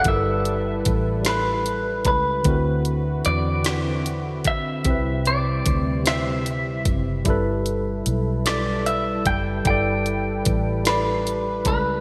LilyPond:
<<
  \new Staff \with { instrumentName = "Clean electric guitar" } { \time 6/8 \key g \major \tempo 4. = 50 e''4. b'4 b'8~ | b'8 r8 d''4. e''8~ | e''8 d''4 e''4 r8 | r4. d''8 e''8 g''8 |
g''4. b'4 b'8 | }
  \new Staff \with { instrumentName = "Tine electric piano" } { \time 6/8 \key g \major <g e' a' bes' b'>4. <g e' a' b'>4. | <d c' e' fis' bes' b'>4. <d c' e' fis' b'>4. | <c c' e' b'>4. <c c' e' c''>4. | <g e' a' b'>4. <g e' a' d''>4. |
<g e' a' d''>4. <g e' a' d''>4. | }
  \new Staff \with { instrumentName = "Analog synth pad" } { \time 6/8 \key g \major << { b'2.~ | b'2. | r2. | b'2.~ |
b'2. | } \\ { <g e' a'>2. | <d c' e' fis'>2. | <c g c'>2. | <g a'>2.~ |
<g a'>2. | } >> }
  \new Staff \with { instrumentName = "Fingered electric bass" } { \clef bass \time 6/8 \key g \major g,,4 a,,4. cis,8 | d,4 e,4. b,,8 | c,4 d,4. fis,,8 | g,,4 b,,4. fis,,8 |
g,,4 a,,4. cis,8 | }
  \new DrumStaff \with { instrumentName = "Drums" } \drummode { \time 6/8 <hh bd>8 hh8 <hh bd>8 <hh sn>8 hh8 <hh bd>8 | <hh bd>8 hh8 hh8 <hh sn>8 hh8 <hh bd>8 | <hh bd>8 hh8 <hh bd>8 <hh sn>8 hh8 <hh bd>8 | <hh bd>8 hh8 hh8 <hh sn>8 hh8 <hh bd>8 |
<hh bd>8 hh8 <hh bd>8 <hh sn>8 hh8 <hh bd>8 | }
>>